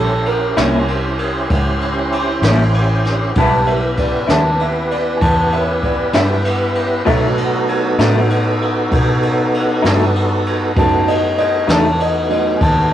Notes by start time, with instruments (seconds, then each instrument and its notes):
Already playing: fingered electric bass A#1, tonewheel organ C#4 E4 G4 C5, upright piano A4
0.26 upright piano A#4, ride
0.57 fingered electric bass C2, clean electric guitar A#2 G3 C#4 E4, upright piano G3 C#4 E4, snare, ride
0.88 ride
1.19 ride
1.50 fingered electric bass C#2, kick, ride
1.81 ride
2.12 ride
2.42 fingered electric bass A1, clean electric guitar A#2 G3 C#4 E4, snare, ride
2.74 ride
3.05 snare, ride
3.34 fingered electric bass B1, clean electric guitar E3 G3 E4, upright piano G3 B3 E4 A5, tonewheel organ B3 E4 G4 B4, kick, ride
3.38 clean electric guitar B3
3.67 upright piano E5, ride
3.97 upright piano D5, kick, ride
4.27 fingered electric bass D#2, clean electric guitar E3 G3 B3 E4, upright piano A5, snare, ride
4.60 upright piano E5, ride
4.91 upright piano D5, ride
5.17 upright piano G#5
5.21 fingered electric bass E2, upright piano A5, kick, ride
5.52 upright piano E5, ride
5.83 upright piano D5, kick, ride
6.13 fingered electric bass G2, clean electric guitar E3 G3 B3 E4, upright piano E5, snare, ride
6.45 ride
6.75 ride
7.05 clean electric guitar B2 F#3 A3 D#4, fingered electric bass B2, upright piano F#3 A3 D#4, tonewheel organ B3 D#4 F#4 A4, kick, ride
7.38 ride
7.69 ride
7.99 fingered electric bass A2, clean electric guitar B2 F#3 A3 D#4, upright piano F#3 A3 D#4, snare, ride
8.30 ride
8.62 ride
8.91 fingered electric bass B2, kick, ride
9.23 ride
9.54 ride
9.82 fingered electric bass G2, clean electric guitar B2 F#3 A3 D#4, snare, ride
10.15 ride
10.46 ride
10.75 fingered electric bass F#2, upright piano F#3 A3 D#4 A5, tonewheel organ A3 B3 D#4 F#4, kick, ride
11.08 upright piano D#5, ride
11.38 upright piano D#5, ride
11.67 fingered electric bass E2, clean electric guitar B2 F#3 A3 D#4, upright piano A5, snare, ride
12.00 upright piano D#5, ride
12.29 upright piano F#3 A3 D#4 D#5, ride
12.57 upright piano G#5
12.61 fingered electric bass D#2, upright piano A5, kick, ride